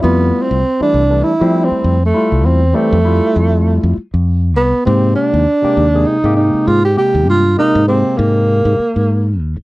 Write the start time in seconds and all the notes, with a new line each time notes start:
0.02 F2 G3 A3 B3 E4 F4
0.42 C4
0.51 C2
0.80 E3 G3 A3 D4 E4, muted fingered electric bass stroke
0.94 C2
1.10 E3 G3 A3 D4
1.24 E4
1.40 F3 G3 A3 C4 E4
1.64 C4
1.71 muted fingered electric bass stroke
1.84 F2
2.05 A3
2.14 G3 A3 E4 F4
2.32 C2
2.45 E2 C4
2.73 E3 G3 A3 C4
2.92 F2
3.05 G3 A3 E4 F4
3.36 F2
3.83 F2
3.97 muted fingered electric bass stroke
4.14 F2
4.57 C2 B3
4.74 muted fingered electric bass stroke
4.85 G#2 C3 G#3 A#3 C4 G4
5.15 D4
5.34 D#2
5.62 C3 G#3 A#3 G4, muted fingered electric bass stroke
5.77 D#2
5.94 C3 G#3 A#3 G#4
6.06 D#4
6.23 G#2 C3 G#3 A#3 G4
6.36 D#4
6.54 muted fingered electric bass stroke
6.67 G#2 F4
6.85 G4
6.96 C3 G#3 A#3 G4
7.15 D#2
7.28 G2 F4
7.57 C3 G#3 A#3 D#4 A#4
7.75 G#2
7.87 C3 G#3 A#3 C4 G4
8.17 G#2 A#3
8.65 G#2
8.79 muted fingered electric bass stroke
8.96 G#2
9.39 D#2
9.57 muted fingered electric bass stroke